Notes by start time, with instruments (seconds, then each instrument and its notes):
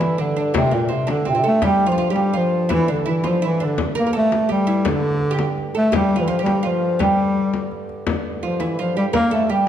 Already playing: harmonium G2 D3, bass clarinet E3, oud E4
0.01 frame drum
0.18 bass clarinet D3, oud D4, frame drum
0.37 oud D4
0.54 bass clarinet C3, oud C4, frame drum
0.71 bass clarinet A#2, oud A#3, frame drum
0.89 bass clarinet C3, oud C4, frame drum
1.07 bass clarinet D3, oud D4, frame drum
1.25 bass clarinet C3, oud C4, frame drum
1.32 bass clarinet A#2, oud C4
1.38 bass clarinet C3
1.44 bass clarinet A3, oud A4
1.62 bass clarinet G3, oud G4, frame drum
1.80 frame drum
1.86 bass clarinet F3, oud F4
1.92 oud F4
1.98 oud F4, frame drum
2.10 bass clarinet G3, oud G4
2.16 frame drum
2.34 bass clarinet F3, oud F4, frame drum
2.69 bass clarinet E3, oud E4, frame drum
2.88 bass clarinet D3, oud D4, frame drum
3.06 oud E4, frame drum
3.10 bass clarinet E3
3.24 oud F4, frame drum
3.28 bass clarinet F3
3.42 oud E4
3.46 bass clarinet E3
3.60 oud D4, frame drum
3.64 bass clarinet D3
3.77 harmonium G2 D3, frame drum
3.95 oud A#4, frame drum
4.00 bass clarinet A#3
4.07 oud A#4
4.13 oud A4, frame drum
4.17 bass clarinet A3
4.32 frame drum
4.49 bass clarinet G3, oud G4, frame drum
4.67 oud E4
4.85 bass clarinet D3, oud D4, frame drum
5.03 frame drum
5.21 frame drum
5.31 oud G4
5.39 frame drum
5.58 frame drum
5.75 bass clarinet A3, oud A4
5.92 bass clarinet G3, oud G4, frame drum
6.11 frame drum
6.16 bass clarinet F3, oud F4
6.23 bass clarinet E3
6.28 bass clarinet F3, oud F4, frame drum
6.39 oud G4
6.43 bass clarinet G3, frame drum
6.63 oud F4, frame drum
6.67 bass clarinet F3
6.99 bass clarinet G3, oud G4, frame drum
7.54 frame drum
7.71 frame drum
7.89 frame drum
8.07 harmonium G2 D3, frame drum
8.43 bass clarinet F3, oud F4, frame drum
8.60 bass clarinet E3, oud E4, frame drum
8.79 bass clarinet F3, oud F4
8.97 bass clarinet G3, oud G4
9.13 bass clarinet A#3, oud A#4, frame drum
9.31 bass clarinet A3, oud A4
9.49 bass clarinet G3, oud G4, frame drum